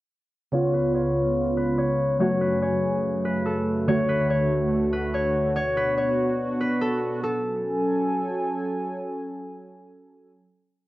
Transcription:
0.51 analog synth pad C#2 C#3 B3 F4, synth keys C#3 B3 F4, harp C#5
0.73 harp B4
0.94 harp C#5
1.57 harp B4
1.78 harp C#5
2.19 analog synth pad F#2 C#3 A3 G#5, synth keys F#3 A3 F#4, harp C#5
2.41 harp B4
2.62 harp C#5
3.25 harp B4
3.46 harp A4
3.87 analog synth pad D2 D3 F#4, synth keys D3 A3 F#4, harp C#5
4.09 harp B4
4.30 harp C#5
4.93 harp B4
5.14 harp C#5
5.56 analog synth pad B2 B3 D4, harp C#5
5.77 harp B4
5.98 harp C#5
6.61 harp B4
6.82 harp A4
7.24 analog synth pad F#3 C#4 A4 G#5, harp A4

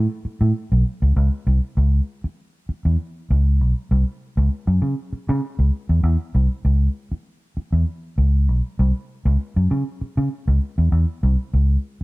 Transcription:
0.25 muted fingered electric bass stroke
0.41 fingered electric bass A2
0.72 fingered electric bass B1
1.02 fingered electric bass C#2
1.16 fingered electric bass C#2
1.47 fingered electric bass C2
1.77 fingered electric bass C#2
2.24 muted fingered electric bass stroke
2.69 muted fingered electric bass stroke
2.85 fingered electric bass E2
3.30 fingered electric bass C#2
3.61 fingered electric bass B1
3.91 fingered electric bass C2
4.37 fingered electric bass C#2
4.67 fingered electric bass F#2
4.82 fingered electric bass C#3
5.13 muted fingered electric bass stroke
5.29 fingered electric bass C#3
5.59 fingered electric bass C#2
5.89 fingered electric bass E2
6.03 fingered electric bass E2
6.35 fingered electric bass C2
6.65 fingered electric bass C#2
7.12 muted fingered electric bass stroke
7.57 muted fingered electric bass stroke
7.73 fingered electric bass E2
8.18 fingered electric bass C#2
8.48 fingered electric bass B1
8.79 fingered electric bass C2
9.25 fingered electric bass C#2
9.56 fingered electric bass F#2
9.71 fingered electric bass C#3
10.01 muted fingered electric bass stroke
10.17 fingered electric bass C#3
10.48 fingered electric bass C#2
10.78 fingered electric bass E2
10.92 fingered electric bass E2
11.23 fingered electric bass C2
11.54 fingered electric bass C#2

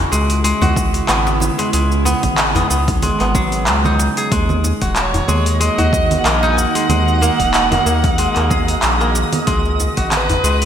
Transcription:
Already playing: analog synth pad C#3 G#3 E4 F#4, kora G#3 A#3 F#4
0.12 analog synth bass C#2, kora G#3, djembe tone, cabasa
0.30 open hi-hat, cabasa
0.44 kora G#3, open hi-hat, cabasa
0.61 analog synth bass C#2, kora F#4, open hi-hat, djembe tone, djembe bass, low conga, cabasa
0.76 kick, cabasa
0.94 open hi-hat, cabasa
1.08 analog synth bass G#1, kora B3, clap, open hi-hat, cabasa
1.27 djembe slap, cabasa
1.40 djembe tone, low conga, cabasa
1.58 kora G#3, open hi-hat, djembe slap, cabasa
1.73 analog synth bass C#2, kora G#3, open hi-hat, cabasa
1.92 cabasa
2.05 kora B3, djembe tone, cabasa
2.23 analog synth bass G#1, kick, open hi-hat, low conga, cabasa
2.38 clap, open hi-hat, cabasa
2.55 kora B3, open hi-hat, djembe bass, cabasa
2.70 analog synth bass C#2, kora B3, cabasa
2.88 kick, open hi-hat, djembe slap, djembe bass, cabasa
3.02 kora G#3, open hi-hat, djembe slap, low conga, cabasa
3.20 analog synth bass G#1, kora B3, clap, open hi-hat, cabasa
3.35 kora F#3, kick, djembe tone, cabasa
3.52 open hi-hat, cabasa
3.67 analog synth bass C#2, clap, open hi-hat, cabasa
3.84 kora D#4, djembe tone, low conga, cabasa
3.99 djembe slap, cabasa
4.17 kora G#4, open hi-hat, cabasa
4.31 analog synth bass D#2, analog synth pad D#3, kora G#3, synth texture D#5, kick, open hi-hat, cabasa
4.49 low conga, cabasa
4.64 analog synth pad A#3, djembe tone, cabasa
4.82 analog synth bass D#1, kora F#4, kick, open hi-hat, cabasa
4.96 kamancheh C#5, clap, open hi-hat, cabasa
5.00 analog synth pad F#4
5.14 open hi-hat, djembe bass, cabasa
5.28 analog synth bass D#2, kora G#3, djembe tone, low conga, cabasa
5.46 analog synth pad D#4, open hi-hat, cabasa
5.60 kora G#3, kamancheh D#5, open hi-hat, cabasa
5.78 analog synth bass D#2, kora F#4, open hi-hat, djembe tone, djembe bass, cabasa
5.93 kick, cabasa
6.11 open hi-hat, low conga, cabasa
6.19 kamancheh F#5
6.25 analog synth bass A#1, kora A#3, kamancheh D#5, clap, open hi-hat, cabasa
6.43 kora D#4, djembe slap, cabasa
6.51 kamancheh G#5
6.57 kamancheh F#5, djembe tone, cabasa
6.75 kora G#3, open hi-hat, djembe slap, cabasa
6.89 analog synth bass D#2, kora G#3, open hi-hat, low conga, cabasa
7.08 cabasa
7.21 kora A#3, djembe tone, cabasa
7.40 analog synth bass D#1, kick, open hi-hat, cabasa
7.54 clap, open hi-hat, cabasa
7.72 kora A#3, open hi-hat, djembe bass, low conga, cabasa
7.86 analog synth bass D#2, kora A#3, cabasa
8.04 kick, open hi-hat, djembe slap, djembe bass, cabasa
8.18 kora G#3, open hi-hat, djembe slap, cabasa
8.36 analog synth bass D#2, kora A#3, clap, open hi-hat, cabasa
8.50 kora G#4, kick, djembe tone, low conga, cabasa
8.68 open hi-hat, cabasa
8.82 analog synth bass A#1, clap, open hi-hat, cabasa
9.01 kora A#3, cabasa
9.15 djembe slap, cabasa
9.33 open hi-hat, low conga, cabasa
9.47 analog synth bass C#2, analog synth pad C#3, kora G#3, kick, open hi-hat, cabasa
9.65 cabasa
9.80 analog synth pad G#3, djembe tone, cabasa
9.97 analog synth bass G#1, kora F#4, kick, open hi-hat, cabasa
10.12 kamancheh B4, clap, open hi-hat, low conga, cabasa
10.29 open hi-hat, djembe bass, cabasa
10.44 analog synth bass C#2, kora G#3, djembe tone, cabasa
10.62 open hi-hat

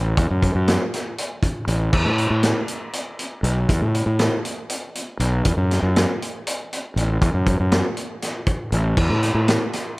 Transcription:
Already playing: fingered electric bass A1
0.17 fingered electric bass E2, kick, closed hi-hat
0.30 fingered electric bass F#2
0.43 kick, closed hi-hat
0.55 fingered electric bass F#2
0.68 snare, closed hi-hat
0.94 snare, closed hi-hat
1.18 closed hi-hat
1.43 kick, closed hi-hat
1.67 fingered electric bass A1, closed hi-hat
1.93 fingered electric bass E2, kick, crash
2.05 fingered electric bass A2
2.18 closed hi-hat
2.30 fingered electric bass A2
2.43 snare, closed hi-hat
2.68 closed hi-hat
2.93 closed hi-hat
3.19 closed hi-hat
3.43 fingered electric bass B1, closed hi-hat
3.69 fingered electric bass E2, kick, closed hi-hat
3.82 fingered electric bass A2
3.94 closed hi-hat
4.06 fingered electric bass A2
4.19 snare, closed hi-hat
4.45 closed hi-hat
4.69 closed hi-hat
4.95 closed hi-hat
5.19 fingered electric bass B1, closed hi-hat
5.45 fingered electric bass E2, kick, closed hi-hat
5.57 fingered electric bass F#2
5.71 snare, closed hi-hat
5.82 fingered electric bass F#2
5.96 snare, closed hi-hat
6.22 closed hi-hat
6.47 closed hi-hat
6.73 closed hi-hat
6.96 fingered electric bass A1, closed hi-hat
7.21 fingered electric bass E2, kick, closed hi-hat
7.34 fingered electric bass F#2
7.46 kick, closed hi-hat
7.60 fingered electric bass F#2
7.72 snare, closed hi-hat
7.97 closed hi-hat
8.22 snare, closed hi-hat
8.46 kick, closed hi-hat
8.72 fingered electric bass A1, closed hi-hat
8.97 fingered electric bass E2, kick, crash
9.10 fingered electric bass A2
9.23 snare, closed hi-hat
9.34 fingered electric bass A2
9.48 snare, closed hi-hat
9.73 snare, closed hi-hat

